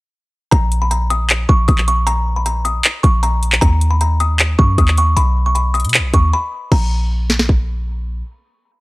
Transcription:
0.51 1.45 A#1 loud
0.51 0.79 A#5 loud
0.51 kick loud
0.51 closed hi-hat medium
0.72 closed hi-hat medium
0.82 0.89 B5 medium
0.91 1.07 A#5 medium
0.91 closed hi-hat medium
1.10 1.47 D#6 medium
1.10 closed hi-hat medium
1.30 clap loud
1.30 closed hi-hat medium
1.49 1.68 A#1 loud
1.49 1.65 C#6 medium
1.49 kick loud
1.68 2.81 A#1 loud
1.68 1.84 D#6 medium
1.68 kick loud
1.68 closed hi-hat medium
1.78 clap medium
1.88 2.03 C#6 medium
1.88 closed hi-hat medium
2.07 2.34 A#5 loud
2.07 closed hi-hat medium
2.36 2.44 B5 medium
2.46 2.61 A#5 medium
2.46 closed hi-hat medium
2.65 3.01 D#6 medium
2.65 closed hi-hat medium
2.84 clap loud
2.84 closed hi-hat medium
3.03 3.60 A#1 loud
3.03 3.19 C#6 medium
3.03 kick loud
3.03 closed hi-hat medium
3.23 3.59 A#5 loud
3.23 closed hi-hat medium
3.43 closed hi-hat medium
3.52 clap loud
3.61 4.55 D#2 loud
3.61 3.89 A#5 loud
3.61 kick loud
3.61 closed hi-hat medium
3.81 closed hi-hat medium
3.91 3.99 B5 medium
4.01 4.17 A#5 medium
4.01 closed hi-hat medium
4.20 4.57 D#6 medium
4.20 closed hi-hat medium
4.39 clap loud
4.39 closed hi-hat medium
4.59 4.77 F#2 loud
4.59 4.74 C#6 medium
4.59 kick loud
4.78 5.15 D#2 loud
4.78 4.94 D#6 medium
4.78 kick medium
4.78 closed hi-hat medium
4.88 clap medium
4.97 5.13 C#6 medium
4.97 closed hi-hat medium
5.17 5.86 B1 loud
5.17 5.44 B5 loud
5.17 closed hi-hat medium
5.46 5.54 C#6 medium
5.55 5.71 B5 medium
5.55 closed hi-hat medium
5.74 6.11 D#6 medium
5.74 closed hi-hat soft
5.80 closed hi-hat medium
5.85 6.01 B2 loud
5.85 closed hi-hat medium
5.89 closed hi-hat medium
5.94 clap loud
5.94 closed hi-hat medium
5.99 6.13 B1 loud
6.14 6.32 D#2 loud
6.14 6.30 C#6 medium
6.14 kick loud
6.14 closed hi-hat medium
6.33 6.70 B5 medium
6.72 8.22 A#1 loud
6.72 7.84 A#5 medium
6.72 kick loud
6.72 crash medium
7.30 snare medium
7.39 snare medium
7.49 kick medium

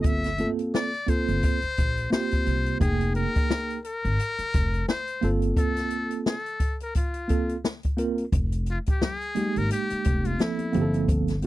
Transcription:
0.00 0.41 G1 medium
0.00 0.27 A#3 medium
0.00 0.27 C4 medium
0.00 0.28 F4 medium
0.00 0.31 A4 medium
0.00 0.08 D#5 medium
0.00 closed hi-hat medium
0.04 0.49 E5 loud
0.04 kick loud
0.24 snare soft
0.24 closed hi-hat medium
0.38 0.46 A3 medium
0.38 0.90 C4 medium
0.38 0.90 F4 medium
0.38 0.90 A4 medium
0.38 closed hi-hat medium
0.45 0.92 A#3 medium
0.59 closed hi-hat medium
0.74 1.11 D5 loud
0.74 snare loud
0.94 closed hi-hat soft
1.07 1.58 A#3 medium
1.07 1.58 C4 medium
1.07 1.59 F4 medium
1.07 1.59 A4 medium
1.07 2.12 C5 loud
1.07 kick medium
1.07 closed hi-hat medium
1.28 1.40 G1 medium
1.28 closed hi-hat soft
1.43 kick medium
1.43 closed hi-hat medium
1.62 muted upright bass stroke soft
1.62 closed hi-hat soft
1.77 2.05 A#1 medium
1.77 kick medium
1.77 closed hi-hat medium
1.97 closed hi-hat soft
2.10 2.78 A#3 medium
2.10 2.80 C4 medium
2.10 2.81 F4 medium
2.10 2.81 G4 medium
2.10 2.77 C5 loud
2.10 snare loud
2.31 kick medium
2.31 closed hi-hat medium
2.46 2.74 C2 medium
2.46 closed hi-hat medium
2.66 closed hi-hat medium
2.80 3.24 F1 loud
2.80 3.78 A#3 medium
2.80 3.78 D#4 medium
2.80 3.13 G#4 medium
2.80 3.79 G#4 medium
2.80 3.79 G5 medium
2.80 kick loud
2.80 closed hi-hat medium
3.01 closed hi-hat medium
3.15 3.80 A#4 loud
3.15 closed hi-hat medium
3.35 kick medium
3.35 closed hi-hat soft
3.50 snare loud
3.70 closed hi-hat soft
3.84 4.84 A#4 loud
3.84 closed hi-hat medium
4.05 4.16 G#1 medium
4.05 closed hi-hat soft
4.19 closed hi-hat medium
4.38 muted upright bass stroke soft
4.38 closed hi-hat soft
4.54 4.81 F1 medium
4.54 kick medium
4.54 closed hi-hat medium
4.74 closed hi-hat soft
4.88 5.28 C5 medium
4.88 snare loud
5.07 closed hi-hat medium
5.22 5.50 G1 medium
5.22 6.33 A#3 medium
5.22 6.34 C4 medium
5.22 6.34 F4 medium
5.22 6.35 A4 medium
5.22 closed hi-hat medium
5.42 closed hi-hat soft
5.57 6.22 A4 medium
5.57 kick loud
5.57 closed hi-hat medium
5.77 snare soft
5.77 closed hi-hat medium
5.90 closed hi-hat medium
6.11 closed hi-hat medium
6.26 6.77 A4 medium
6.26 snare loud
6.46 closed hi-hat soft
6.60 kick medium
6.60 closed hi-hat medium
6.80 6.95 A#4 medium
6.80 closed hi-hat soft
6.95 7.61 F4 medium
6.95 kick medium
6.95 closed hi-hat medium
7.14 closed hi-hat soft
7.28 7.54 A#3 medium
7.28 7.55 C4 medium
7.28 7.55 F4 medium
7.28 7.55 A4 medium
7.28 kick medium
7.28 closed hi-hat medium
7.49 closed hi-hat soft
7.64 snare medium
7.83 kick medium
7.83 closed hi-hat soft
7.97 8.23 A#3 medium
7.97 8.24 C4 medium
7.97 8.24 F4 medium
7.97 8.24 A#4 medium
7.97 closed hi-hat medium
8.18 closed hi-hat soft
8.32 8.76 F1 medium
8.32 kick loud
8.32 closed hi-hat medium
8.32 maracas medium
8.52 closed hi-hat medium
8.52 maracas soft
8.66 closed hi-hat medium
8.66 maracas soft
8.71 8.79 F4 medium
8.86 9.02 G4 medium
8.86 kick medium
8.86 closed hi-hat medium
8.86 maracas soft
9.02 9.59 G#4 medium
9.02 snare loud
9.02 low conga medium
9.02 maracas medium
9.21 closed hi-hat soft
9.21 maracas soft
9.35 10.33 G#3 medium
9.35 10.33 A#3 medium
9.35 10.34 D#4 medium
9.35 10.34 G4 medium
9.35 closed hi-hat medium
9.35 high conga soft
9.35 low conga medium
9.35 maracas soft
9.56 9.68 G#1 medium
9.56 9.71 A#4 loud
9.56 closed hi-hat medium
9.56 maracas soft
9.70 10.28 G4 medium
9.70 closed hi-hat medium
9.70 maracas medium
9.90 muted upright bass stroke soft
9.90 closed hi-hat medium
9.90 maracas soft
10.04 10.33 F1 medium
10.04 kick medium
10.04 closed hi-hat medium
10.04 maracas soft
10.25 10.43 F4 medium
10.25 closed hi-hat soft
10.25 high conga medium
10.25 maracas soft
10.38 10.73 F3 soft
10.38 10.72 A#3 medium
10.38 10.72 C4 soft
10.38 11.09 E4 medium
10.38 10.80 A4 medium
10.38 snare loud
10.38 maracas medium
10.59 closed hi-hat soft
10.59 high conga medium
10.59 maracas soft
10.73 11.45 G1 medium
10.73 11.31 F3 medium
10.73 11.31 A#3 medium
10.73 11.31 C4 medium
10.73 10.82 G4 medium
10.73 closed hi-hat medium
10.73 low conga medium
10.73 maracas soft
10.81 11.35 A4 medium
10.94 closed hi-hat medium
10.94 maracas soft
11.08 kick loud
11.08 closed hi-hat medium
11.08 maracas medium
11.28 snare soft
11.28 closed hi-hat medium
11.28 maracas soft
11.42 11.46 A#3 medium
11.42 11.46 C4 medium
11.42 closed hi-hat medium
11.42 maracas soft

